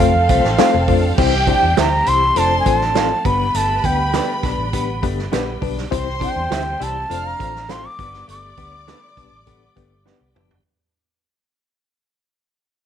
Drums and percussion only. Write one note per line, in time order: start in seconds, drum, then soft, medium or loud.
0.00 kick medium
0.29 kick loud
0.29 closed hi-hat medium
0.44 snare soft
0.58 snare loud
0.58 closed hi-hat medium
0.88 kick medium
0.88 open hi-hat soft
1.18 kick loud
1.18 crash loud
1.47 kick loud
1.47 closed hi-hat medium
1.77 snare loud
1.77 closed hi-hat medium
2.06 closed hi-hat medium
2.36 closed hi-hat medium
2.66 kick loud
2.66 closed hi-hat medium
2.81 snare soft
2.95 snare loud
2.95 closed hi-hat medium
3.25 kick loud
3.25 closed hi-hat medium
3.55 closed hi-hat loud
3.84 kick loud
3.84 closed hi-hat medium
4.14 snare loud
4.14 closed hi-hat loud
4.43 kick loud
4.43 snare soft
4.43 closed hi-hat medium
4.73 kick medium
4.73 closed hi-hat medium
5.03 kick loud
5.03 closed hi-hat medium
5.19 snare soft
5.33 snare loud
5.33 closed hi-hat medium
5.62 kick medium
5.62 open hi-hat medium
5.78 snare soft
5.92 kick loud
5.92 closed hi-hat loud
6.21 kick medium
6.21 closed hi-hat medium
6.52 snare loud
6.52 closed hi-hat medium
6.81 closed hi-hat medium
7.11 closed hi-hat medium
7.40 kick medium
7.40 closed hi-hat medium
7.56 snare soft
7.69 snare loud
7.69 closed hi-hat medium
7.99 kick loud
7.99 closed hi-hat medium
8.14 snare soft
8.29 closed hi-hat loud
8.57 kick medium
8.57 closed hi-hat medium
8.88 snare loud
8.88 closed hi-hat medium
9.17 kick loud
9.17 closed hi-hat medium
9.47 kick medium
9.47 closed hi-hat medium
9.76 kick loud
9.76 closed hi-hat medium
10.07 snare medium
10.36 mid tom medium
10.51 floor tom medium